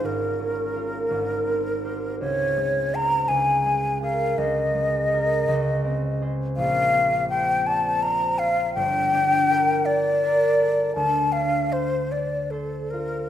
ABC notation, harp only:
X:1
M:6/8
L:1/8
Q:3/8=55
K:Ab
V:1 name="Harp"
[A,,,DEFA] D [FB] A,,, C [Gc] | D,, A, [Ac] D,, A, [AB] | D,, A, [AB] D,, C [Ac] | [K:Bb] B,,, C c d c F |
G,,, D B d B A | D,, D c d c F |]